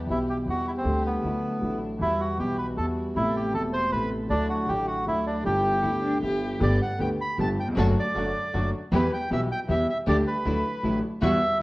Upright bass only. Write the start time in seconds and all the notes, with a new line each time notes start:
0.09 B1
0.47 E2
0.85 D2
1.24 D2
1.62 A1
2.01 E2
2.40 B1
2.78 E2
3.16 A1
3.55 E1
3.92 A1
4.30 D2
4.69 A1
5.07 D2
5.45 G1
5.84 D2
6.22 G1
6.61 G1
7.00 D2
7.38 G1
7.77 F#1
8.16 F#1
8.54 F#1
8.92 E2
9.31 B1
9.69 E2
10.07 D2
10.45 D2
10.83 A1
11.22 E2